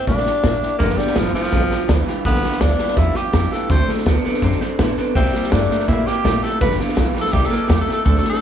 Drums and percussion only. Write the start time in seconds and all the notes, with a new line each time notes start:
0.07 kick, snare
0.17 snare
0.26 snare
0.44 kick, snare, hi-hat pedal
0.62 snare
0.80 kick, snare
0.89 snare
0.98 snare
1.07 snare
1.16 kick, snare, hi-hat pedal
1.34 snare
1.43 snare
1.52 kick, snare
1.71 snare
1.89 kick, snare, hi-hat pedal
2.07 snare
2.25 kick, snare
2.35 snare
2.43 snare
2.52 snare
2.61 kick, snare, hi-hat pedal
2.78 snare
2.88 snare
2.96 kick, snare
3.15 snare
3.33 kick, snare, hi-hat pedal
3.52 snare
3.70 kick, snare
3.89 snare
3.97 snare
4.06 kick, snare, hi-hat pedal
4.24 snare
4.34 snare
4.42 kick, snare
4.52 snare
4.61 snare
4.79 kick, snare, hi-hat pedal
4.97 snare
5.15 kick, snare
5.25 snare
5.34 snare
5.43 snare
5.52 kick, snare, hi-hat pedal
5.70 snare
5.79 snare
5.88 kick, snare
6.07 snare
6.25 kick, snare, hi-hat pedal
6.44 snare
6.61 kick, snare
6.70 snare
6.80 snare
6.89 snare
6.97 kick, snare, hi-hat pedal
7.16 snare
7.25 snare
7.33 kick, snare
7.43 snare
7.52 snare
7.70 kick, snare, hi-hat pedal
7.89 snare
8.06 kick, snare
8.15 snare
8.24 snare
8.33 snare